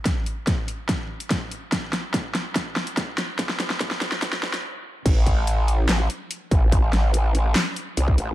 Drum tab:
CC |----------------|----------------|----------------|x---------------|
HH |x-x-x-x-x--xx-x-|x-x-x-x-x--xx-x-|x-x-x-x-x--x----|x-x-x-x-x-x-x-x-|
CP |----------------|----------------|----------------|--------x-------|
SD |o---o---o---o---|o-o-o-o-o-o-o-o-|oooooooooooo----|--------o-------|
BD |o---o---o---o---|o---o---o---o---|o---o---o-------|o-o-----------o-|

CC |----------------|
HH |x-x-x-x-x-x-x-x-|
CP |--------x-------|
SD |--o-----o-------|
BD |o------------o--|